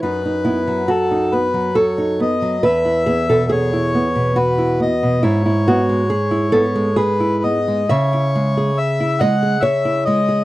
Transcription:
<<
  \new Staff \with { instrumentName = "Bandoneon" } { \time 3/4 \key e \major \tempo 4 = 69 b'4 a'8 b'8 cis''8 dis''8 | e''4 cis''4 b'8 dis''8 | cis''2 b'8 dis''8 | cis''4 e''8 fis''8 e''8 dis''8 | }
  \new Staff \with { instrumentName = "Nylon-string guitar" } { \time 3/4 \key e \major << { dis'8 e'8 fis'4 a'4 | b'8 gis'16 a'16 gis'4 fis'4 | e'8 fis'8 gis'8 a'8 gis'4 | e''4. dis''8 cis''4 | } \\ { fis,16 dis'16 b16 fis8 dis'16 b16 fis8 dis'16 b16 fis16 | e,16 e'16 b16 b,8 e'16 b16 b,8 e'16 b16 b,16 | gis,16 e'16 b16 gis8 e'16 b16 gis8 e'16 b16 gis16 | cis16 e'16 gis16 gis'8 e'16 gis16 gis'8 e'16 gis16 gis'16 | } >> }
>>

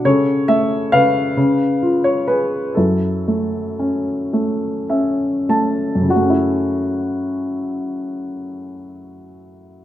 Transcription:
<<
  \new Staff \with { instrumentName = "Grand piano" } { \time 6/8 \key fis \minor \tempo 4. = 36 << { cis''8 e''8 eis''4~ eis''16 cis''16 b'8 | a'2 e''8 a''8 | fis'2. | } \\ { a'4 b'4. r8 | e'2 r4 | r2. | } >> }
  \new Staff \with { instrumentName = "Grand piano" } { \time 6/8 \key fis \minor cis8 a8 cis8 cis8 eis'8 gis'8 | fis,8 a8 cis'8 a8 cis'8 a8 | <fis, cis fis a cis' e'>2. | }
>>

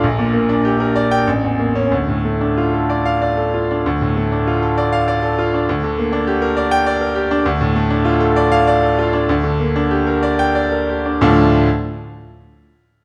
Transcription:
\new Staff \with { instrumentName = "Grand piano" } { \time 3/4 \key d \minor \tempo 4 = 97 << { r4. r16 g''16 r8. cis'16 | r4. r16 f''8 r8. | r4. r16 f''8 r8. | r4. r16 g''8 r8. |
r4. r16 f''8 r8. | r4. r16 g''8 r8. | <d, a, f a d' f'>8 r2 r8 | } \\ { bes,,16 bes,16 bes16 d'16 g'16 bes'16 d''8 a,,16 e,16 bes8 | d,16 a,16 a16 d'16 f'16 a'16 d''8 d''16 a'16 f'16 d'16 | d,16 a,16 a16 d'16 f'16 a'16 d''8 d''16 a'16 f'16 d'16 | d,16 d16 bes16 d'16 g'16 bes'16 d''8 d''16 bes'16 g'16 d'16 |
d,16 a,16 a16 d'16 f'16 a'16 d''8 d''16 a'16 f'16 d'16 | d,16 d16 bes16 d'16 g'16 bes'16 d''8 d''16 bes'16 g'16 d'16 | r2. | } >> }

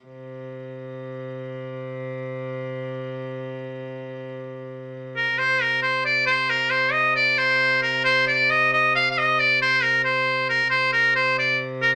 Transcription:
<<
  \new Staff \with { instrumentName = "Shawm" } { \time 6/8 \key c \minor \tempo 4. = 90 r2. | r2. | r2. | r2 r8 bes'8 |
c''8 bes'8 c''8 d''8 c''8 bes'8 | c''8 ees''8 d''8 c''4 bes'8 | c''8 d''8 ees''8 ees''8 f''16. f''32 ees''8 | d''8 c''8 bes'8 c''4 bes'8 |
c''8 bes'8 c''8 d''8 r8 bes'8 | }
  \new Staff \with { instrumentName = "Viola da gamba" } { \clef bass \time 6/8 \key c \minor c2.~ | c2.~ | c2.~ | c2. |
c2.~ | c2.~ | c2.~ | c2. |
c2. | }
>>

